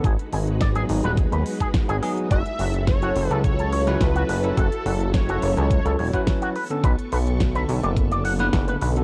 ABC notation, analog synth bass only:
X:1
M:4/4
L:1/16
Q:1/4=106
K:F#m
V:1 name="Analog synth bass" clef=bass
G,,, z G,,,4 G,,, ^D,,,2 ^D,, z3 G,,, z2 | F,,, z F,,,4 F,,, C,,4- C,, C,,2 F,,,2 | F,,, z F,,,4 F,,, C,,2 C,, E,,, z4 z | B,,, z B,,,4 B,,, F,,,4- F,,, F,,,2 B,,,2 |]